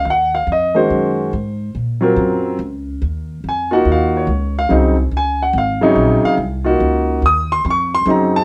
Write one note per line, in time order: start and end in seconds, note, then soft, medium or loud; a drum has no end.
0.05 0.46 D#2 medium
0.05 0.08 F5 medium
0.10 0.35 F#5 medium
0.35 0.48 F5 medium
0.47 0.88 F2 medium
0.52 0.77 D#5 medium
0.75 1.29 D#3 medium
0.75 1.29 G#3 medium
0.75 1.30 C#4 medium
0.75 1.30 F#4 medium
0.75 1.71 C5 medium
0.90 1.31 F#2 medium
1.33 1.74 G#2 medium
1.75 2.16 A#2 medium
2.01 2.56 F#3 medium
2.01 2.56 C4 medium
2.01 2.56 F4 medium
2.01 2.57 A#4 medium
2.16 2.58 F#2 medium
2.59 3.00 C#2 medium
3.02 3.43 D#2 medium
3.44 3.85 F2 medium
3.49 3.73 G#5 medium
3.71 4.25 A#3 medium
3.71 4.26 D#4 medium
3.71 4.25 F4 medium
3.71 4.26 F#4 medium
3.71 3.87 F#5 medium
3.85 4.27 D#2 medium
3.92 4.15 F5 medium
4.17 4.54 C#5 medium
4.27 4.68 C#2 medium
4.59 4.72 F5 medium
4.69 5.11 C2 medium
4.69 4.94 C#3 medium
4.69 4.94 F#3 medium
4.69 4.95 C4 medium
4.69 4.95 D#4 medium
5.11 5.53 C#2 medium
5.17 5.41 G#5 medium
5.42 5.56 F#5 medium
5.53 5.95 G#1 medium
5.58 5.83 F5 medium
5.81 6.36 C3 medium
5.81 6.36 C#3 medium
5.81 6.36 F#3 medium
5.81 6.36 D#4 medium
5.81 6.22 C#5 medium
5.96 6.21 A#1 medium
6.24 6.34 F5 medium
6.24 muted upright bass stroke soft
6.38 6.79 C2 medium
6.64 7.20 A#3 medium
6.64 7.20 D#4 medium
6.64 7.19 F4 medium
6.64 7.20 F#4 medium
6.80 7.21 C#2 medium
7.22 7.63 D#2 medium
7.22 7.51 D#6 medium
7.52 7.64 C6 loud
7.65 8.05 F2 medium
7.65 7.68 C6 medium
7.70 7.94 C#6 medium
7.95 8.08 C6 loud
8.06 8.44 F#2 medium
8.06 8.44 C#3 medium
8.06 8.44 F#3 medium
8.06 8.44 C4 medium
8.06 8.44 D#4 medium
8.10 8.35 A#5 medium
8.36 8.44 A5 loud